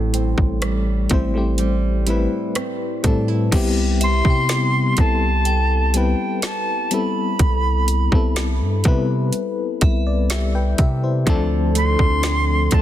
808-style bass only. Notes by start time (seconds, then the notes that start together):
Already playing: A1
0.38 A1
1.11 A1
3.04 A2
3.52 C2
4.25 C3
4.98 C2
7.40 C2
8.12 C2
8.61 G2
8.85 C3
9.82 C2
10.79 C3
11.27 D2
11.99 D2
12.72 D2